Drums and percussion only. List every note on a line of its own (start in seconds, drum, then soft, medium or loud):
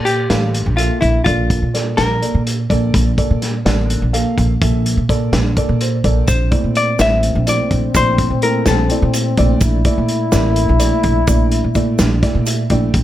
0.06 closed hi-hat medium
0.30 snare medium
0.30 closed hi-hat medium
0.54 closed hi-hat medium
0.78 closed hi-hat medium
1.02 kick medium
1.02 closed hi-hat medium
1.26 kick loud
1.26 closed hi-hat medium
1.50 kick medium
1.50 closed hi-hat medium
1.75 snare soft
1.75 closed hi-hat medium
1.98 snare loud
1.98 closed hi-hat medium
2.23 closed hi-hat medium
2.47 closed hi-hat medium
2.70 kick medium
2.70 closed hi-hat medium
2.94 kick loud
2.94 closed hi-hat medium
3.18 kick medium
3.18 closed hi-hat soft
3.42 snare soft
3.42 closed hi-hat medium
3.66 snare loud
3.66 closed hi-hat medium
3.90 closed hi-hat medium
4.14 closed hi-hat medium
4.38 kick medium
4.38 closed hi-hat medium
4.62 kick loud
4.62 closed hi-hat medium
4.86 closed hi-hat medium
5.09 kick medium
5.09 closed hi-hat medium
5.33 snare loud
5.33 closed hi-hat medium
5.57 kick medium
5.57 closed hi-hat medium
5.81 closed hi-hat medium
6.04 kick medium
6.04 closed hi-hat soft
6.28 kick loud
6.28 closed hi-hat medium
6.28 shaker soft
6.52 kick medium
6.52 closed hi-hat medium
6.75 closed hi-hat medium
6.99 snare medium
6.99 closed hi-hat medium
6.99 shaker soft
7.23 closed hi-hat medium
7.47 closed hi-hat medium
7.47 shaker soft
7.71 kick medium
7.71 closed hi-hat medium
7.94 kick loud
7.94 closed hi-hat medium
7.94 shaker medium
8.18 kick medium
8.18 closed hi-hat medium
8.42 closed hi-hat medium
8.66 snare loud
8.66 closed hi-hat medium
8.66 shaker soft
8.90 closed hi-hat medium
9.14 closed hi-hat medium
9.14 shaker soft
9.37 kick medium
9.37 closed hi-hat medium
9.61 kick loud
9.61 closed hi-hat medium
9.61 shaker medium
9.85 kick medium
9.85 closed hi-hat medium
10.09 closed hi-hat medium
10.32 snare loud
10.32 closed hi-hat medium
10.32 shaker soft
10.56 closed hi-hat medium
10.80 closed hi-hat medium
10.80 shaker soft
11.03 kick medium
11.03 closed hi-hat medium
11.27 kick loud
11.27 closed hi-hat medium
11.27 shaker medium
11.51 closed hi-hat medium
11.75 kick medium
11.75 closed hi-hat medium
11.75 shaker soft
11.99 snare loud
11.99 closed hi-hat medium
11.99 shaker soft
12.23 kick medium
12.23 snare soft
12.23 closed hi-hat medium
12.46 closed hi-hat medium
12.46 shaker soft
12.70 kick medium
12.70 closed hi-hat medium
12.94 kick medium
12.94 closed hi-hat medium